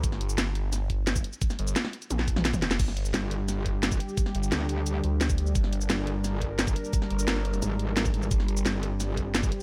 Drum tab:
CC |----------------|----------------|x---------------|----------------|
HH |x-x-x-x-x-x-x-x-|x-xxx-xxx-x-x-x-|x-x-x-x-x-x-x-x-|x-x-x-x-x-x-x-x-|
SH |x--xx---x---xx-x|xx-xx--xx-x-xx-x|x--xx---x---xx-x|x--xx---x---xx-x|
SD |-o--o---o---o---|-o--oo---o-oo-oo|-o--o---o---o---|-o--oo------o---|
T1 |----------------|--------o-------|----------------|----------------|
T2 |----------------|-----------o-o--|----------------|----------------|
BD |o---------o--o--|o---------o--o--|o---------o--o--|o------------o--|

CC |----------------|----------------|----------------|
HH |x-x-x-x-x-x-x-x-|x-x-x-xxx-x-x-x-|x-x-x-x-x-x-x-x-|
SH |x--xx---x---xx-x|x--xx--xx---xx-x|x--xx---x---xx--|
SD |-o--o---o---o---|-o--oo------o---|-o--o---o---o---|
T1 |----------------|----------------|----------------|
T2 |----------------|----------------|----------------|
BD |o---------o--o--|o------------o--|o---------o--o--|